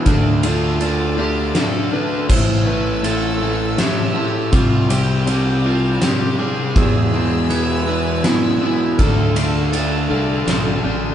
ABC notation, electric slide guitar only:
X:1
M:3/4
L:1/8
Q:1/4=81
K:Ddor
V:1 name="Electric slide guitar"
D F2 G A B | c B A2 G2 | F G2 F G ^G- | ^G3 B E E |
A4- A z |]